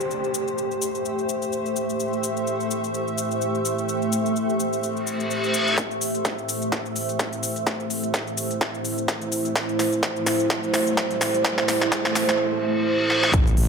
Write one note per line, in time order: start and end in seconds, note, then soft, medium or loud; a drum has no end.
0.00 5.74 A3 medium
0.00 12.39 A3 medium
0.00 5.74 E4 medium
0.00 12.39 G4 medium
0.00 5.74 C5 medium
0.00 12.39 C5 medium
0.00 12.39 E5 medium
0.00 downlifter medium
0.00 cabasa soft
0.11 cabasa soft
0.24 cabasa soft
0.34 cabasa medium
0.48 cabasa soft
0.58 cabasa soft
0.71 cabasa soft
0.82 cabasa medium
0.95 cabasa soft
1.05 cabasa soft
1.19 cabasa soft
1.29 cabasa medium
1.42 cabasa soft
1.52 cabasa soft
1.66 cabasa soft
1.76 cabasa medium
1.89 cabasa soft
2.00 cabasa soft
2.13 cabasa soft
2.23 cabasa medium
2.37 cabasa soft
2.47 cabasa soft
2.60 cabasa soft
2.71 cabasa medium
2.84 cabasa soft
2.94 cabasa soft
3.08 cabasa soft
3.18 cabasa medium
3.31 cabasa soft
3.41 cabasa soft
3.55 cabasa soft
3.65 cabasa medium
3.78 cabasa soft
3.89 cabasa soft
4.02 cabasa soft
4.12 cabasa medium
4.26 cabasa soft
4.36 cabasa soft
4.49 cabasa soft
4.60 cabasa medium
4.73 cabasa soft
4.83 reverse cymbal medium
4.83 cabasa soft
4.97 cabasa soft
5.07 cabasa medium
5.20 cabasa soft
5.30 cabasa soft
5.44 cabasa soft
5.54 cabasa medium
5.67 cabasa soft
5.78 13.30 A3 medium
5.78 13.30 E4 medium
5.78 13.30 C5 medium
5.78 kick loud
5.78 snare soft
5.78 closed hi-hat medium
5.78 riser medium
5.78 cabasa soft
5.91 cabasa soft
6.01 open hi-hat loud
6.01 cabasa medium
6.15 closed hi-hat medium
6.15 cabasa soft
6.25 kick loud
6.25 snare soft
6.25 closed hi-hat medium
6.25 cabasa soft
6.38 cabasa soft
6.49 open hi-hat loud
6.49 cabasa medium
6.62 closed hi-hat medium
6.62 cabasa soft
6.72 kick loud
6.72 snare medium
6.72 closed hi-hat medium
6.72 cabasa soft
6.86 cabasa soft
6.96 open hi-hat loud
6.96 cabasa medium
7.09 closed hi-hat medium
7.09 cabasa soft
7.19 kick loud
7.19 snare medium
7.19 closed hi-hat medium
7.19 cabasa soft
7.33 closed hi-hat medium
7.33 cabasa soft
7.43 open hi-hat loud
7.43 cabasa medium
7.56 closed hi-hat medium
7.56 cabasa soft
7.67 kick loud
7.67 snare medium
7.67 closed hi-hat medium
7.67 cabasa soft
7.80 cabasa soft
7.90 open hi-hat loud
7.90 cabasa medium
8.04 closed hi-hat medium
8.04 cabasa soft
8.14 kick loud
8.14 snare medium
8.14 closed hi-hat medium
8.14 cabasa soft
8.27 cabasa soft
8.37 open hi-hat loud
8.37 cabasa medium
8.51 closed hi-hat medium
8.51 cabasa soft
8.61 kick loud
8.61 snare medium
8.61 closed hi-hat medium
8.61 cabasa soft
8.74 cabasa soft
8.85 open hi-hat loud
8.85 cabasa medium
8.98 closed hi-hat medium
8.98 cabasa soft
9.08 kick loud
9.08 snare medium
9.08 closed hi-hat medium
9.08 cabasa soft
9.22 closed hi-hat medium
9.22 cabasa soft
9.32 open hi-hat loud
9.32 cabasa medium
9.45 closed hi-hat medium
9.45 cabasa soft
9.56 kick loud
9.56 snare medium
9.56 closed hi-hat medium
9.56 cabasa soft
9.69 cabasa soft
9.79 snare medium
9.79 open hi-hat loud
9.79 cabasa medium
9.92 closed hi-hat medium
9.92 cabasa soft
10.03 kick loud
10.03 snare medium
10.03 closed hi-hat medium
10.03 cabasa soft
10.16 cabasa soft
10.26 snare medium
10.26 open hi-hat loud
10.26 cabasa medium
10.40 closed hi-hat medium
10.40 cabasa soft
10.50 kick loud
10.50 snare medium
10.50 closed hi-hat medium
10.50 cabasa soft
10.63 cabasa soft
10.74 snare medium
10.74 open hi-hat loud
10.74 cabasa medium
10.87 closed hi-hat medium
10.87 cabasa soft
10.97 kick loud
10.97 snare medium
10.97 closed hi-hat medium
10.97 cabasa soft
11.11 closed hi-hat medium
11.11 cabasa soft
11.21 snare medium
11.21 open hi-hat loud
11.21 cabasa medium
11.34 closed hi-hat medium
11.34 cabasa soft
11.45 kick loud
11.45 snare medium
11.45 closed hi-hat medium
11.45 cabasa soft
11.58 snare medium
11.58 cabasa soft
11.68 snare medium
11.68 open hi-hat loud
11.68 cabasa medium
11.81 snare medium
11.81 closed hi-hat soft
11.81 cabasa soft
11.92 kick loud
11.92 snare loud
11.92 closed hi-hat medium
11.92 cabasa soft
12.05 snare medium
12.05 cabasa soft
12.15 snare loud
12.15 open hi-hat loud
12.15 cabasa medium
12.29 snare medium
12.29 closed hi-hat medium
12.29 cabasa soft
12.39 reverse cymbal medium
13.10 snare medium
13.23 snare medium
13.33 13.56 A1 medium
13.33 13.68 A3 medium
13.33 13.68 E4 medium
13.33 13.68 C5 medium
13.33 kick loud
13.33 closed hi-hat medium
13.33 impact medium
13.33 cabasa medium
13.47 cabasa soft
13.57 13.68 A1 loud
13.57 open hi-hat loud